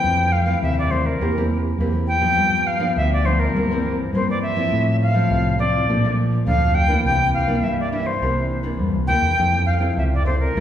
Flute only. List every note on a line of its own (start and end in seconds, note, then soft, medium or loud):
0.00 0.33 G5 loud
0.32 0.62 F5 medium
0.62 0.76 E5 medium
0.78 0.92 D5 medium
0.91 1.08 C5 medium
1.06 1.65 A#4 medium
2.07 2.68 G5 loud
2.67 2.96 F5 medium
2.97 3.10 E5 medium
3.13 3.27 D5 medium
3.25 3.41 C5 medium
3.39 3.98 A#4 medium
4.14 4.27 C5 medium
4.30 4.41 D5 medium
4.42 4.97 E5 medium
5.02 5.56 F5 medium
5.59 6.16 D5 medium
6.47 6.76 F5 medium
6.74 7.04 G5 loud
7.06 7.33 G5 loud
7.34 7.65 F5 medium
7.63 7.78 E5 medium
7.80 7.92 D5 medium
7.92 8.08 E5 medium
8.06 8.65 C5 medium
9.07 9.63 G5 loud
9.66 9.94 F5 medium
9.98 10.04 E5 medium
10.14 10.25 D5 medium
10.26 10.39 C5 medium
10.39 10.60 A#4 medium